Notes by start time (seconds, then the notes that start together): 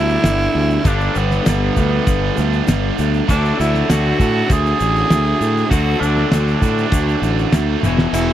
Already playing: D2 G2 D3 G3 B3 D4 E4 G4
0.10 shaker
0.24 G1, snare, ride bell, shaker
0.55 D2
0.70 shaker
0.84 G1 G2 D3 G3 B3 D4 G4, kick, ride bell, shaker
1.00 shaker
1.15 G1 B3, shaker
1.31 snare, shaker
1.46 G1 B3, snare, ride bell, shaker
1.75 D2 G2 D3 G3 B3 D4 G4, kick, shaker
2.07 G1, kick, ride bell, shaker
2.37 D2, shaker
2.53 shaker
2.68 G1, snare, ride bell, shaker
2.99 D2, shaker
3.14 shaker
3.28 D2 D3 F#3 A3 D4 F#4, kick, ride bell, shaker
3.45 shaker
3.60 D2 E4, shaker
3.75 snare, shaker
3.90 D2 F#4, snare, ride bell, shaker
4.18 A2 D3 F#3 A3 D4 F#4, kick, shaker
4.50 D2 G#4, kick, ride bell, shaker
4.66 shaker
4.80 A1, shaker
4.96 shaker
5.10 D2, snare, ride bell, shaker
5.41 A2, shaker
5.58 shaker
5.69 D2 D3 F#3 A3 D4 F#4, kick, ride bell, shaker
6.00 D2 D4, shaker
6.17 snare
6.31 D2 D4, snare, ride bell, shaker
6.48 shaker
6.61 A2 D3 F#3 A3 D4 F#4, kick, shaker
6.78 shaker
6.92 D2, kick, ride bell, shaker
7.09 shaker
7.22 A1, shaker
7.39 shaker
7.52 D2, snare, ride bell, shaker
7.83 E1 E2 B2 E3 B3 E4 F#4, high tom, shaker
7.98 snare, shaker
8.13 E1 E4, crash, ride bell, shaker
8.30 shaker